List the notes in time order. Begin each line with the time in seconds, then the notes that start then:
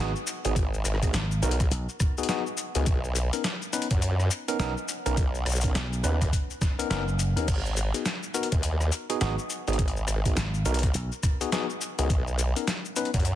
0.00 G#1 B3 D#4 F#4 G#4
0.16 shaker
0.27 shaker
0.45 G#1 B3 D#4 F#4 G#4, closed hi-hat, shaker
0.56 kick, closed hi-hat, shaker
0.74 shaker
0.85 G#1, cross-stick, closed hi-hat, shaker
0.95 cross-stick
1.03 B3 D#4 F#4 G#4, kick, cross-stick, closed hi-hat, shaker
1.14 G#1, snare, closed hi-hat, shaker
1.31 shaker
1.42 B1 B3 D#4 F#4 A#4, closed hi-hat, shaker
1.51 closed hi-hat
1.60 kick, cross-stick, closed hi-hat, shaker
1.71 B1, closed hi-hat, shaker
1.89 shaker
2.00 kick, cross-stick, closed hi-hat, shaker
2.18 B3 D#4 F#4 G#4, shaker
2.23 closed hi-hat
2.29 B3 D#4 F#4 G#4, snare, closed hi-hat, shaker
2.46 shaker
2.57 shaker
2.75 C#2 B3 D#4 F#4 G#4, closed hi-hat, shaker
2.86 B1, kick, closed hi-hat, shaker
3.04 shaker
3.15 closed hi-hat, shaker
3.33 B3 C#4 D#4 A#4, closed hi-hat, shaker
3.44 snare, closed hi-hat, shaker
3.62 shaker
3.73 B3 C#4 D#4 B4, closed hi-hat, shaker
3.82 closed hi-hat
3.91 F#2, kick, closed hi-hat, shaker
4.02 closed hi-hat, shaker
4.20 cross-stick, shaker
4.31 closed hi-hat, shaker
4.48 B3 C#4 D#4 A#4, closed hi-hat, shaker
4.59 B1 B3 C#4 D#4 A#4, snare, closed hi-hat, shaker
4.77 shaker
4.88 shaker
5.06 B1 B3 C#4 D#4 A#4, closed hi-hat, shaker
5.17 kick, closed hi-hat, shaker
5.35 shaker
5.46 B1, cross-stick, closed hi-hat, shaker
5.49 shaker
5.52 shaker
5.55 shaker
5.61 B3 C#4 D#4 A#4, kick, closed hi-hat, shaker
5.64 shaker
5.75 B1, snare, closed hi-hat, shaker
5.93 shaker
6.04 D#2 B3 C#4 D#4 B4, closed hi-hat, shaker
6.21 kick, cross-stick, closed hi-hat, shaker
6.33 kick, closed hi-hat, shaker
6.50 shaker
6.61 kick, cross-stick, snare, shaker
6.79 B3 C#4 D#4 A#4, closed hi-hat, shaker
6.90 F#1 B3 C#4 D#4 A#4, snare, closed hi-hat, shaker
7.08 shaker
7.19 closed hi-hat, shaker
7.36 D#2 B3 C#4 D#4 A#4, closed hi-hat, shaker
7.48 G#1, kick, closed hi-hat, crash, shaker
7.66 shaker
7.77 closed hi-hat, shaker
7.94 B3 D#4 F#4 G#4, closed hi-hat, shaker
8.06 snare, closed hi-hat, shaker
8.23 shaker
8.34 B3 D#4 F#4 A#4, closed hi-hat, shaker
8.43 closed hi-hat
8.52 D#2, kick, closed hi-hat, shaker
8.63 closed hi-hat, shaker
8.81 cross-stick, shaker
8.92 closed hi-hat, shaker
9.10 B3 D#4 F#4 G#4, closed hi-hat
9.21 G#1 B3 D#4 F#4 G#4, snare, closed hi-hat, shaker
9.39 shaker
9.50 shaker
9.68 G#1 B3 D#4 F#4 G#4, closed hi-hat, shaker
9.73 closed hi-hat
9.79 kick, closed hi-hat, shaker
9.88 closed hi-hat
9.97 shaker
10.08 G#1, cross-stick, closed hi-hat, shaker
10.25 B3 D#4 F#4 G#4, kick, closed hi-hat, shaker
10.36 G#1, snare, closed hi-hat, shaker
10.54 shaker
10.65 B1 B3 D#4 F#4 A#4, closed hi-hat, shaker
10.74 closed hi-hat
10.79 closed hi-hat
10.83 kick, cross-stick, closed hi-hat, shaker
10.86 closed hi-hat
10.94 B1, closed hi-hat, shaker
11.12 shaker
11.23 kick, cross-stick, closed hi-hat, shaker
11.41 B3 D#4 F#4 G#4, closed hi-hat, shaker
11.52 B3 D#4 F#4 G#4, snare, closed hi-hat, shaker
11.70 shaker
11.81 shaker
11.99 C#2 B3 D#4 F#4 G#4, closed hi-hat, shaker
12.10 B1, kick, closed hi-hat, shaker
12.27 shaker
12.39 closed hi-hat, shaker
12.56 B3 C#4 D#4 A#4, closed hi-hat, shaker
12.68 snare, closed hi-hat, shaker
12.85 shaker
12.96 B3 C#4 D#4 B4, closed hi-hat, shaker
13.05 closed hi-hat
13.14 F#2, kick, closed hi-hat, shaker
13.20 closed hi-hat
13.25 closed hi-hat, shaker